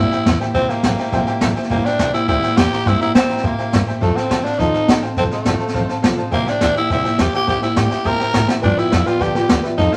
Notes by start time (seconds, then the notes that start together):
Already playing: C3 G3
0.00 A#3 E4
0.11 A#3 E4 G4 C5 E5 G5, muted upright bass stroke, snare
0.25 E2 G3 A#3 E4 G4 C5 E5 G5, kick, snare, hi-hat pedal
0.40 A#3 E4 G4 C5 E5 G5, snare
0.54 C2 C3 G3 A#3 C4 E4 G4 C5 E5 G5, kick, snare
0.69 A#3 E4 G4 C5 E5 G5, muted upright bass stroke, snare
0.83 A1 G3 A#3 E4 G4 C5 E5 G5, kick, snare, hi-hat pedal
0.98 A#3 E4 G4 C5 E5 G5, snare
1.05 snare
1.12 A#1 C3 G3 A#3 E4 G4 C5 E5 G5, kick, snare
1.26 A#3 E4 G4 C5 E5 G5, muted upright bass stroke, snare
1.40 A1 G3 A#3 E4 G4 C5 E5 G5, kick, snare, hi-hat pedal
1.55 A#3 E4 G4 C5 E5 G5, muted upright bass stroke, snare
1.63 snare
1.70 G1 C3 G3 A#3 E4 G4 C5 E5 G5, kick, snare
1.85 A#3 D4 E4 G4 C5 E5 G5, muted upright bass stroke, snare
1.99 C2 G3 A#3 E4 G4 C5 E5 G5, kick, snare, hi-hat pedal
2.13 A#3 E4 G4 C5 E5 G5, muted upright bass stroke, snare
2.28 D2 C3 G3 A#3 E4 G4 C5 E5 G5, kick, snare
2.42 A#3 E4 G4 C5 E5 G5, muted upright bass stroke, snare
2.55 E2 G3 A#3 E4 G4 C5 E5 G5, kick, snare, hi-hat pedal
2.71 A#3 E4 G4 C5 E5 A#5, snare
2.79 snare
2.86 G2 C3 G3 A#3 E4 G4 C5 E5 G5, kick, snare
3.00 A#3 E4 G4 C5 E5 A#5, snare
3.15 A#3 C4 E4 C5 E5 G5, kick, snare, hi-hat pedal
3.29 A#3 E4 G4 C5 E5 A#5, muted upright bass stroke, snare
3.37 snare
3.43 A#2 C3 G3 A#3 E4 G4 C5 E5 G5, kick, snare
3.58 A#3 E4 G4 C5 E5 G5, muted upright bass stroke, snare
3.72 G2 G3 A#3 E4 G4 C5 E5 G5, kick, snare, hi-hat pedal
3.87 A#3 E4 G4 C5 E5 G5, snare
4.00 F2 F3 A3 C4 D#4 A4 C5 F5 A5, kick, snare
4.15 C4 D#4 A4 C5 F5 A5, snare
4.30 D2 F3 C4 D#4 A4 C5 F5 A5, kick, snare, hi-hat pedal
4.44 C4 D4 D#4 A4 C5 F5 A5, snare
4.52 snare
4.59 D#2 F3 C4 D#4 A4 C5 F5 A5, kick, snare
4.73 C4 D#4 A4 C5 F5 A5, muted upright bass stroke, snare
4.88 F2 F3 C4 D#4 A4 C5 F5 A5, kick, snare, hi-hat pedal
5.02 C4 D#4 A4 C5 F5 G5, muted upright bass stroke, snare
5.16 F1 F3 C4 D#4 A4 C5 F5 A5, kick, snare
5.30 A3 C4 D#4 A4 C5 F5 A5, muted upright bass stroke, snare
5.45 G1 F3 C4 D#4 A4 C5 F5 A5, kick, snare, hi-hat pedal
5.60 C4 D#4 A4 C5 F5 A5, muted upright bass stroke, snare
5.67 snare
5.74 A1 F3 C4 D#4 A4 C5 F5 A5, kick, snare
5.88 C4 D#4 A4 C5 F5 A5, snare
6.02 A#1 F3 C4 D#4 A4 C5 F5 A5, kick, snare, hi-hat pedal
6.17 C4 D#4 A4 C5 F5 A5, muted upright bass stroke, snare
6.31 C2 C3 G3 A#3 E4 G4 C5 E5 G5, kick, snare
6.45 A#3 E4 G4 C5 E5 G5, muted upright bass stroke, snare
6.49 D4
6.60 D2 G3 A#3 D4 E4 G4 C5 E5 G5, kick, snare, hi-hat pedal
6.75 A#3 E4 G4 C5 E5 G5, snare
6.90 C2 C3 G3 A#3 E4 G4 C5 E5 G5, kick, snare
7.03 A#3 E4 G4 C5 E5 G5, muted upright bass stroke, snare
7.18 E2 G3 A#3 E4 G4 C5 E5 G5, kick, snare, hi-hat pedal
7.33 A#3 E4 G4 C5 E5 G5, snare
7.47 G2 C3 G3 A#3 E4 G4 C5 E5 G5, kick, snare
7.62 A#3 E4 G4 C5 E5 G5, muted upright bass stroke, snare
7.75 A2 G3 A#3 E4 G4 C5 E5 G5, kick, snare, hi-hat pedal
7.90 A#3 E4 G4 C5 E5 G5, snare
8.04 A#2 C3 G3 A#3 E4 G4 A#4 C5 E5 G5, kick, snare
8.18 A#3 E4 G4 C5 E5 G5, muted upright bass stroke, snare
8.32 A2 G3 A#3 E4 G4 C5 E5 G5, kick, snare, hi-hat pedal
8.47 A#3 E4 G4 C5 E5 G5, snare
8.62 G2 D3 F3 B3 D4 F4 G4 B4 D5 G5, kick, snare
8.77 F3 B3 E4 F4 G4 B4 D5 G5, snare
8.90 F2 F3 B3 F4 G4 B4 D5 F5, kick, snare, hi-hat pedal
9.05 F3 B3 F4 G4 B4 D5 G5, snare
9.20 C2 G2 D3 F3 B3 F4 G4 B4 D5 G5, kick, snare
9.35 F3 B3 F4 G4 B4 D5 G5, muted upright bass stroke, snare
9.48 D2 F3 B3 F4 B4 D5 F5, kick, snare, hi-hat pedal
9.63 F3 B3 F4 G4 B4 D5 E5, snare
9.77 F2 F3 C4 D#4 A4 C5 F5 A5, kick, snare
9.92 F4 A4 C5 F5 A5, snare